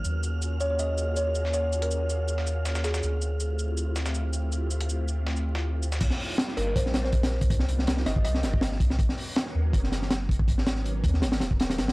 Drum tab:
CC |----------------|----------------|----------------|----------------|
HH |----------------|---x------------|----------------|---x------------|
SH |x-x-x-x-x-x-x-x-|x-x-x-x-x-x-xxxx|x-x-x-x-x-xxx-x-|x-x-x-x--x----xx|
SD |---------------o|---------o--oooo|----------oo----|--------o--o---o|
BD |----------------|----------------|----------------|----------------|

CC |x---------------|----------------|----------------|----------------|
HH |x-o-x-x-x-x-xx-x|x-x-x-x-x-x-x-x-|x-o-x---x-x-x-x-|x-x-x-x-xxx-xxxx|
SH |----------------|----------------|----------------|----------------|
SD |-o--oo---ooo-oo-|-o-oooo--oo-oo-o|-o--oo---oooo---|-ooo---oooo-oooo|
BD |o-------o---o--o|o------o---o--o-|o-------o-----oo|o-----o----o----|